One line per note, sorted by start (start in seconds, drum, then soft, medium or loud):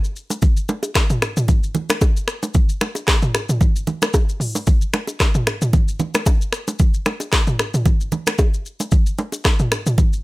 0.04 shaker medium
0.16 shaker medium
0.30 low bongo medium
0.30 shaker loud
0.42 kick loud
0.42 low conga medium
0.42 shaker medium
0.57 shaker medium
0.69 low bongo medium
0.69 shaker medium
0.83 high bongo medium
0.83 shaker medium
0.95 finger snap medium
0.95 kick medium
0.95 cross-stick loud
0.95 clap loud
0.95 high bongo medium
0.95 shaker medium
1.10 mid tom loud
1.10 shaker medium
1.22 finger snap medium
1.22 cross-stick loud
1.22 high bongo medium
1.22 shaker medium
1.37 mid tom loud
1.37 shaker loud
1.48 kick loud
1.48 low conga medium
1.48 shaker medium
1.63 shaker medium
1.75 low bongo medium
1.75 low conga medium
1.75 shaker medium
1.90 finger snap medium
1.90 cross-stick loud
1.90 low bongo medium
1.90 shaker medium
2.01 kick loud
2.01 high bongo medium
2.01 shaker medium
2.17 shaker medium
2.28 finger snap medium
2.28 cross-stick medium
2.28 shaker medium
2.43 low bongo medium
2.43 shaker loud
2.54 kick loud
2.54 low conga medium
2.54 shaker medium
2.69 shaker medium
2.81 finger snap medium
2.81 cross-stick medium
2.81 low bongo medium
2.81 shaker medium
2.95 high bongo medium
2.95 shaker medium
3.07 finger snap medium
3.07 kick loud
3.07 cross-stick loud
3.07 clap loud
3.07 high bongo medium
3.07 shaker medium
3.22 mid tom loud
3.22 shaker medium
3.35 finger snap medium
3.35 cross-stick loud
3.35 high bongo medium
3.35 shaker medium
3.49 mid tom loud
3.49 shaker loud
3.61 kick loud
3.61 low conga medium
3.61 shaker medium
3.76 shaker medium
3.87 low bongo medium
3.87 low conga medium
3.87 shaker soft
4.02 finger snap medium
4.02 cross-stick loud
4.02 low bongo medium
4.02 shaker medium
4.13 kick loud
4.13 high bongo medium
4.13 shaker medium
4.29 shaker medium
4.40 mid tom medium
4.40 open hi-hat medium
4.40 shaker medium
4.55 low bongo medium
4.55 shaker loud
4.67 kick loud
4.67 low conga medium
4.67 shaker medium
4.81 shaker medium
4.93 finger snap medium
4.93 cross-stick medium
4.93 low bongo medium
4.93 shaker medium
5.07 high bongo medium
5.07 shaker medium
5.20 finger snap medium
5.20 kick medium
5.20 cross-stick loud
5.20 clap loud
5.20 high bongo medium
5.20 shaker medium
5.34 mid tom loud
5.34 shaker medium
5.47 finger snap medium
5.47 cross-stick loud
5.47 high bongo medium
5.47 shaker medium
5.62 mid tom loud
5.62 shaker medium
5.73 kick loud
5.73 low conga medium
5.73 shaker medium
5.88 shaker medium
6.00 low bongo medium
6.00 low conga medium
6.00 shaker medium
6.14 finger snap medium
6.14 cross-stick loud
6.14 low bongo medium
6.14 shaker medium
6.26 kick loud
6.26 high bongo medium
6.26 shaker medium
6.41 shaker medium
6.52 finger snap medium
6.52 cross-stick medium
6.52 shaker medium
6.68 low bongo medium
6.68 shaker loud
6.79 kick loud
6.79 low conga medium
6.79 shaker medium
6.94 shaker medium
7.06 finger snap medium
7.06 cross-stick medium
7.06 low bongo medium
7.06 shaker medium
7.20 high bongo medium
7.20 shaker medium
7.32 finger snap medium
7.32 kick medium
7.32 cross-stick loud
7.32 clap loud
7.32 high bongo medium
7.32 shaker medium
7.47 mid tom medium
7.47 shaker medium
7.59 finger snap medium
7.59 cross-stick loud
7.59 high bongo medium
7.59 shaker medium
7.74 mid tom loud
7.74 shaker medium
7.86 kick loud
7.86 low conga medium
7.86 shaker medium
8.01 shaker medium
8.12 low bongo medium
8.12 low conga medium
8.12 shaker medium
8.27 finger snap medium
8.27 cross-stick loud
8.27 low bongo medium
8.27 shaker medium
8.38 kick loud
8.38 high bongo medium
8.38 shaker medium
8.54 shaker medium
8.66 shaker medium
8.80 low bongo medium
8.80 shaker loud
8.91 kick loud
8.91 low conga medium
8.91 shaker medium
9.06 shaker medium
9.18 low bongo medium
9.18 shaker medium
9.32 high bongo medium
9.32 shaker medium
9.44 finger snap medium
9.44 kick medium
9.44 cross-stick loud
9.44 clap loud
9.44 high bongo medium
9.44 shaker medium
9.59 mid tom loud
9.59 shaker medium
9.72 finger snap medium
9.72 cross-stick loud
9.72 high bongo medium
9.72 shaker medium
9.86 mid tom loud
9.86 shaker medium
9.98 kick loud
9.98 low conga medium
9.98 shaker medium
10.13 shaker medium